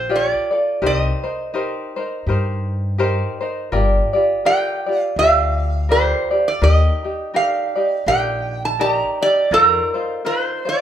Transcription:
Already playing: A#1 C5
0.09 F4 G4 A4 D5
0.16 D5
0.51 F4 A4 D5
0.82 C2 D#4 G4 A#4 C5
0.86 D#5
1.23 D#4 A#4 C5
1.54 D#4 G4 A#4 C5
1.96 D#4 A#4 C5
2.27 G2 D#4 G4 A#4 C5
2.98 D#4 G4 A#4 C5
3.41 D#4 A#4 C5
3.72 G1 F4 G4 A#4 D5
4.13 F4 G4 D5
4.45 F4 G4 A#4 D5 G5
4.86 F4 G4 D5
5.01 F5
5.16 D2 F4 G4 A#4 D5 F5
5.89 F4 G4 A#4 C5 D5
6.31 F4 G4 D5
6.48 D5
6.62 D#2 D#4 G4 A#4 D#5
7.04 D#4 G4
7.34 D#4 G4 A#4 D5 F5
7.76 D#4 G4 D5
8.06 A#1 D#4 G4 A#4 D5 G5
8.65 A5
8.79 D#4 G4 A#4 D5 A5
8.92 A#5
9.21 D#4 G4 D5
9.51 F2 D#4 F4 A#4 C5
9.94 D#4 F4 C5
10.25 D#4 F4 A#4 C5
10.65 D#4 F4 C5 D5

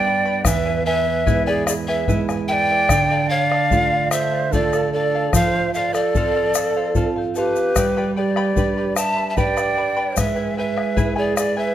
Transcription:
Already playing: G2 G3 B3 D4 D5 G5
0.06 B4 D5 G5 B5
0.25 G4 B4 D5 G5 B5
0.45 E2 E4 B4 E5 G#5, bombo rim, bombo low, shaker
0.66 E4 B4 G#5
0.85 E4 B4 E5 G#5
1.06 E4 B4 G#5
1.26 G#3 B3 E4 G#4 B4 E5 G#5, bombo low, shaker
1.46 E4 G#4 B4 D5 E5 G#5
1.67 E4 G#4 B4 D5 E5 G#5, bombo rim, shaker
1.88 E4 G#4 B4 E5 G#5
2.08 G#3 B3 E4 B4 E5 G#5, bombo low, shaker
2.29 E4 B4 G#5, bombo rim, shaker
2.48 E4 B4 E5 G5 G#5
2.53 D5
2.70 E4 B4 G#5
2.89 D3 A4 D5 F5, bombo rim, bombo low, shaker
3.11 A4 D5 F5
3.29 A4 C#5 D5 F5
3.46 D5
3.51 A4 D5 F5, bombo rim
3.71 A3 D4 F4 A4 D5 F5, bombo low, shaker
3.92 D5 F5
4.11 A4 C5 D5 E5 F5, bombo rim, shaker
4.32 D5 F5
4.52 A3 D4 F4 A4 D5 F5, bombo low, shaker
4.73 A4 D5 F5, bombo rim, shaker
4.93 A4 D5 F5
5.15 A4 D5 F5
5.33 F3 A4 C5 F5, bombo rim, bombo low, shaker
5.55 C5 F5
5.74 A4 C5 E5 F5, shaker
5.78 D5
5.93 A4 D5 F5, bombo rim, shaker
5.98 C5
6.15 C4 F4 A4 C5 F5, bombo low, shaker
6.36 A4 C5 F5
6.55 A4 C5 F5, bombo rim, shaker
6.76 A4 C5 F5
6.95 C4 F4 A4 C5 F5, bombo low, shaker
7.16 C5 F5
7.35 G4 A4 B4 C5 F5, bombo rim, shaker
7.56 C5 F5, bombo rim, shaker
7.76 G3 G4 B4 D5 G5 B5, bombo rim, bombo low, shaker
7.97 G4 B4 D5 G5 B5
8.16 G#4 B4 D5 G5 B5
8.20 G4
8.36 G4 B4 D5 G5 B5, bombo rim
8.56 D4 G4 B4 D5 G5 B5, bombo low, shaker
8.77 B4 D5 B5
8.96 B4 D5 E5 G5 A5 B5, bombo rim, shaker
9.17 B4 D5 B5
9.29 E5 A5
9.37 D4 G4 B4 D5 G5 B5, bombo low, shaker
9.56 G4 B4 D5 G5 B5, bombo rim, shaker
9.77 B4 D5 G5 B5
9.96 G4 B4 D5 G5 B5
10.16 G#3 E4 B4 E5 G#5, bombo rim, bombo low, shaker
10.36 E4 B4 G#5
10.57 E4 B4 C5 E5 G#5
10.76 E4 B4 G#5, bombo rim
10.96 E4 G#4 B4 E5 G#5, bombo low, shaker
11.16 E4 G#4 B4 D5 E5 G#5
11.36 E4 G#4 B4 D5 E5 G#5, bombo rim, shaker
11.57 E4 G#4 B4 E5 G#5

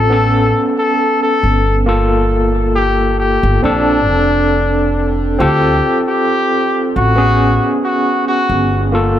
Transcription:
Already playing: A1 C4 F4 A4
0.10 B3 C#4 A4
0.79 A4
1.22 A4
1.43 G1
1.86 A#3 F4 A4
2.75 G4
3.20 G4
3.43 G1
3.62 A#1 C4 D4 A4
4.08 F1
5.39 D2 C4 F4 G4 A4
6.08 G4
6.96 A1 F#4
7.16 B3 C#4 G#4
7.84 F#4
8.28 F#4
8.49 G1
8.92 A#3 F4 A4

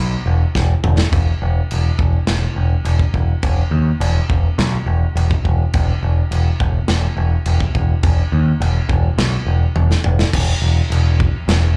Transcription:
Already playing: B1
0.26 E1
0.55 E1, kick, snare
0.84 E1, mid tom
0.98 snare
1.12 E1, kick, china
1.42 E1
1.71 E1, china
1.99 E1, kick
2.27 E1, snare, china
2.56 E1
2.85 E1, china
2.99 kick
3.14 E1, kick
3.43 E1, kick, china
3.71 D#2
4.00 E1, china
4.29 E1, kick
4.58 B1, snare, china
4.86 E1
5.16 E1, china
5.31 kick
5.45 E1, kick
5.73 E1, kick, china
6.03 E1
6.31 E1, china
6.60 E1, kick
6.88 E1, snare, china
7.17 E1
7.45 E1, china
7.60 kick
7.75 E1, kick
8.03 E1, kick, china
8.32 D#2
8.60 E1, china
8.89 E1, kick
9.18 B1, snare, china
9.47 E1
9.76 E1, high tom
9.91 snare
10.04 E1, mid tom
10.19 snare
10.33 E1, kick, crash, china
10.62 E1
10.90 E1, china
11.20 kick
11.48 E1, snare, china

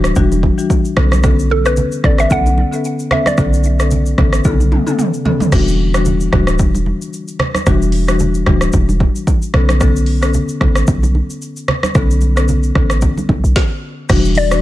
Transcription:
Already playing: D1 E3 G3 D4 F#4
0.04 cross-stick, shaker
0.15 E1 E3 G3 D4 F#4, kick, shaker
0.32 high conga, shaker
0.43 kick, high conga
0.58 E3 G3 D4 F#4, shaker
0.70 kick, shaker
0.85 shaker
0.97 B1 D3 B3 C#4 A4, cross-stick, low conga
1.11 cross-stick, high conga, shaker
1.23 D3 B3 C#4 A4, kick, cross-stick, low conga, shaker
1.39 shaker
1.50 A4, high conga
1.65 D3 B3 C#4 A4 B4, cross-stick, shaker
1.77 low conga, shaker
1.92 shaker
2.04 A1 D3 B3 C#4 A4 D5, kick, cross-stick, high conga, low conga
2.18 E5, cross-stick, shaker
2.30 B1 D3 B3 C#4 A4 F#5, kick, shaker
2.46 high conga, shaker
2.58 high conga
2.72 D3 B3 C#4 A4, shaker
2.85 shaker
2.99 shaker
3.11 D3 B3 C#4 A4 E5, cross-stick, low conga
3.26 D5, cross-stick, high conga, shaker
3.38 B1 D3 B3 C#4 A4, kick, cross-stick, low conga, shaker
3.53 shaker
3.64 high conga, shaker
3.79 D3 B3 C#4 A4, cross-stick, shaker
3.91 low conga, shaker
4.06 shaker
4.18 A1 D3 B3 C#4 A4, kick, cross-stick, high conga, low conga
4.33 cross-stick, shaker
4.44 B1 C#3 D3 B3 A4, kick, high tom, shaker
4.60 high conga, shaker
4.72 mid tom, high conga
4.86 D3 B3 C#4 A4, mid tom, shaker
4.99 mid tom, shaker
5.14 shaker
5.25 D3 B3 C#4 A4, floor tom, low conga
5.40 floor tom, high conga, shaker
5.52 E1 E3 G3 D4 F#4, kick, cross-stick, crash, low conga, shaker
5.68 shaker
5.94 E3 G3 D4 F#4, cross-stick, shaker
6.05 low conga, shaker
6.20 shaker
6.32 D1 E3 G3 D4 F#4, kick, cross-stick, high conga, low conga
6.47 cross-stick, shaker
6.59 E1, kick, shaker
6.75 high conga, shaker
6.86 high conga
7.02 shaker
7.13 shaker
7.28 shaker
7.39 cross-stick, low conga
7.55 cross-stick, high conga, shaker
7.66 E1 E3 G3 D4 F#4, kick, cross-stick, low conga, shaker
7.82 shaker
7.92 open hi-hat
8.08 E3 G3 D4 F#4, cross-stick, shaker
8.19 low conga, shaker
8.34 shaker
8.46 D1 E3 G3 D4 F#4, kick, cross-stick, high conga, low conga
8.61 cross-stick, shaker
8.73 E1, kick, shaker
8.89 high conga, shaker
9.00 kick, high conga
9.16 shaker
9.27 kick, shaker
9.42 shaker
9.54 B1 D3 B3 C#4 A4, cross-stick, low conga
9.69 cross-stick, high conga, shaker
9.80 D3 B3 C#4 A4, kick, cross-stick, low conga, shaker
9.96 shaker
10.06 open hi-hat
10.22 D3 B3 C#4 A4, cross-stick, shaker
10.34 low conga, shaker
10.49 shaker
10.61 A1 D3 B3 C#4 A4, kick, cross-stick, high conga, low conga
10.75 cross-stick, shaker
10.87 B1, kick, shaker
11.03 high conga, shaker
11.15 high conga
11.30 shaker
11.42 shaker
11.56 shaker
11.68 cross-stick, low conga
11.83 cross-stick, high conga, shaker
11.95 B1 D3 B3 C#4 A4, kick, cross-stick, low conga, shaker
12.11 shaker
12.21 high conga, shaker
12.36 D3 B3 C#4 A4, cross-stick, shaker
12.48 low conga, shaker
12.63 shaker
12.75 A1 D3 B3 C#4 A4, kick, cross-stick, high conga, low conga
12.90 cross-stick, shaker
13.01 kick, shaker
13.18 high conga, shaker
13.29 B1, kick, high conga
13.44 B1, shaker
13.56 kick, snare
14.09 E1 E3 G3 D4 F#4, kick, cross-stick, crash, low conga, shaker
14.25 shaker
14.35 D5, open hi-hat, high conga
14.51 E3 G3 D4 F#4, cross-stick, shaker

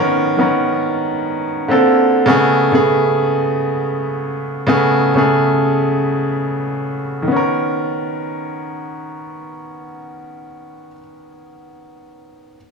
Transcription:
Already playing: D#3 B3 C#4 D4 D#4 A#4
0.37 D#3 B3 C#4 A#4
1.68 D3 A#3 C4 A4
2.26 C#3 A3 B3 G#4
2.72 C#3 A3 B3 G#4
4.67 C#3 A3 B3 G#4
5.14 C#3 A3 B3 G#4
7.22 D#3
7.28 B3
7.32 C#4
7.36 A#4

